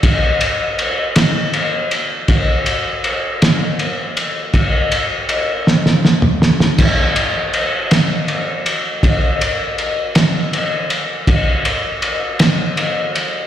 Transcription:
\new DrumStaff \with { instrumentName = "Drums" } \drummode { \time 6/8 \tempo 4. = 53 <bd cymr>8 cymr8 cymr8 <cymr sn>8 cymr8 cymr8 | <bd cymr>8 cymr8 cymr8 <cymr sn>8 cymr8 cymr8 | <bd cymr>8 cymr8 cymr8 sn16 sn16 sn16 toml16 sn16 sn16 | <cymc bd cymr>8 cymr8 cymr8 <cymr sn>8 cymr8 cymr8 |
<bd cymr>8 cymr8 cymr8 <cymr sn>8 cymr8 cymr8 | <bd cymr>8 cymr8 cymr8 <cymr sn>8 cymr8 cymr8 | }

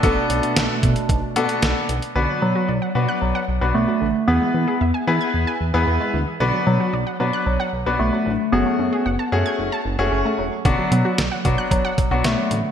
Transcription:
<<
  \new Staff \with { instrumentName = "Synth pluck" } { \time 4/4 \key b \dorian \tempo 4 = 113 r1 | d16 fis16 b16 fis'16 d''16 fis''16 r16 fis'''16 r16 fis''16 r16 fis'16 b16 fis16 d16 r16 | e16 gis16 b16 gis'16 e''16 gis''16 r16 gis'''16 r16 gis''16 r16 gis'16 b16 gis16 e16 r16 | d16 fis16 b16 fis'16 d''16 fis''16 r16 fis'''16 r16 fis''16 r16 fis'16 b16 fis16 d16 r16 |
fis16 a16 cis'16 gis'16 fis''16 a''16 r16 gis'''16 r16 a''16 r16 gis'16 cis'16 a16 fis16 r16 | d16 fis16 b16 fis'16 d''16 fis''16 r16 fis'''16 r16 fis''16 r16 fis'16 b16 fis16 d16 r16 | }
  \new Staff \with { instrumentName = "Grand piano" } { \time 4/4 \key b \dorian <b d' fis' a'>4~ <b d' fis' a'>16 r4 r16 <b d' fis' a'>4 r8 | <b d' fis' b'>4 r8 <b d' fis' b'>8. r8 <b d' fis' b'>8. r8 | <b e' gis' b'>4 r8 <b e' gis' b'>8. r8 <b e' gis' b'>8. r8 | <b d' fis' b'>4 r8 <b d' fis' b'>8. r8 <b d' fis' b'>8. r8 |
<a cis' fis' gis'>4 r8 <a cis' fis' gis'>8. r8 <a cis' fis' gis'>8. r8 | <fis b d' fis'>4 r8 <fis b d' fis'>8. r8 <fis b d' fis'>8. r8 | }
  \new Staff \with { instrumentName = "Analog synth pad" } { \time 4/4 \key b \dorian <b, a d'>1 | r1 | r1 | r1 |
r1 | r1 | }
  \new Staff \with { instrumentName = "Soft synth lead" } { \clef bass \time 4/4 \key b \dorian r1 | r8 fis4. fis4 a4 | b2. r4 | r8 fis4 fis8 fis4 a4 |
b2. r4 | r8 fis4. fis4 a4 | }
  \new Staff \with { instrumentName = "Analog synth bass" } { \clef bass \time 4/4 \key b \dorian b,,16 r16 b,,16 r16 b,,16 r16 b,16 r16 b,,16 r16 b,16 r16 b,,16 r16 b,,16 r16 | b,,16 r16 b,16 r16 b,,16 r16 b,16 r16 b,,16 r16 b,,16 b,,16 b,,16 r16 a,,16 r16 | e,16 r16 e16 r16 e,16 r16 e16 r16 e,16 r16 e,16 e,16 e,16 r16 d,16 r16 | b,,16 r16 b,16 r16 b,,16 r16 b,16 r16 b,,16 r16 b,,16 b,,16 b,,16 r16 a,,16 r16 |
fis,,16 r16 fis,16 r16 fis,,16 r16 fis,16 r16 fis,,16 r16 fis,,16 fis,,16 fis,,16 r16 e,,16 r16 | b,,16 r16 b,16 r16 b,,16 r16 b,16 r16 b,,16 r16 b,,16 b,,16 b,,16 r16 a,,16 r16 | }
  \new DrumStaff \with { instrumentName = "Drums" } \drummode { \time 4/4 <hh bd>8 hh16 hh16 <hh sn>8 <hh bd>16 hh16 <hh bd>8 hh16 hh16 <hh sn>8 hh16 hh16 | r4 r4 r4 r4 | r4 r4 r4 r4 | r4 r4 r4 r4 |
r4 r4 r4 r4 | <hh bd>8 hh8 <hh sn>8 <hh bd>8 <hh bd>8 <hh bd>8 <hh sn>8 hh8 | }
>>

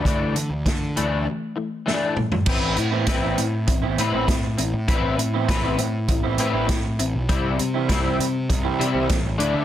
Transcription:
<<
  \new Staff \with { instrumentName = "Clean electric guitar" } { \time 4/4 \key a \minor \tempo 4 = 100 <e a d'>8 <e a>8 <e a>8 <e a d'>8 <e a>8 <e a>8 <e a d'>8 <e a>8 | <c' e' b'>8 <c' e'>8 <c' e' b'>8 <c' e'>8 <c' e'>8 <c' e' b'>8 <c' e'>8 <c' e'>8 | <c' e' b'>8 <c' e'>8 <c' e' b'>8 <c' e'>8 <c' e'>8 <c' e' b'>8 <c' e'>8 <c' e'>8 | <g c' e'>8 <g c'>8 <g c' e'>8 <g c'>8 <g c'>8 <g c' e'>8 <g c'>8 <a d' e'>8 | }
  \new Staff \with { instrumentName = "Clean electric guitar" } { \time 4/4 \key a \minor r1 | r8. <e b c' e'>16 r16 <e b c' e'>16 r8. <e b c' e'>16 r16 <e b c' e'>16 r4 | r8. <e b c' e'>16 r16 <e b c' e'>16 r8. <e b c' e'>16 r16 <e b c' e'>16 r4 | r8. <e g c' e'>16 r16 <e g c' e'>16 r8. <e g c' e'>16 r16 <e g c' e'>16 r4 | }
  \new Staff \with { instrumentName = "Picked electric bass" } { \clef bass \time 4/4 \key a \minor d,8 d16 d,16 d8 d,8 r2 | a,,8 a,8 a,,8 a,8 a,,8 a,16 a,,16 a,8 a,,16 a,16 | a,,8 a,8 a,,8 a,8 a,,8 a,16 a,,16 a,8 a,,16 b,,16 | c,8 c8 c,8 c8 c,8 c16 c,16 a,,8 d,16 d16 | }
  \new DrumStaff \with { instrumentName = "Drums" } \drummode { \time 4/4 <hh bd>8 hh8 <hh bd sn>8 hh8 r4 sn8 toml16 tomfh16 | <cymc bd>8 hh8 <hh bd sn>8 hh8 <hh bd>8 hh8 <hh bd sn>8 hh8 | <hh bd>8 hh8 <hh bd sn>8 hh8 <hh bd>8 hh8 <hh bd sn>8 hh8 | <hh bd>8 hh8 <hh bd sn>8 hh8 <hh bd>8 hh8 <hh bd sn>8 hh8 | }
>>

